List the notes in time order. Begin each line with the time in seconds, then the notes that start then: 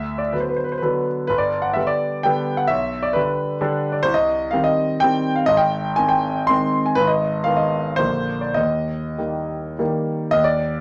Already playing: D2 E5
0.18 D5
0.33 D3 F#3 B3 B4
0.40 C5
0.48 B4
0.56 C5
0.64 B4
0.72 C5
0.78 B4
0.82 D3 F#3 B3
1.27 G1 B4
1.38 D5
1.62 F#5
1.73 D3 G3 B3 E5
1.87 D5
2.23 D3 G3 B3 G5
2.57 F#5
2.67 B1 E5
3.03 D5
3.13 D3 G3 D4 B4
3.61 D3 G3 D4
3.92 D5
4.03 C2 C5
4.14 D#5
4.51 D#3 G3 C4 F5
4.64 D#5
5.00 D#3 G3 C4 G5
5.36 F5
5.46 G#1 D#5
5.57 G5
5.96 D#3 G#3 C4 G#5
6.09 G5
6.47 D#3 G#3 C4 C6
6.86 G#5
6.95 G#1 B4
7.07 D#5
7.44 D#3 G#3 B3 F5
7.57 D#5
7.96 A#1 D3 F3 A#3 C5
8.41 D5
8.54 D#2 D#5
9.18 D#3 G3 A#3
9.79 D#3 G3 A#3
10.31 D#2 D#5
10.44 D5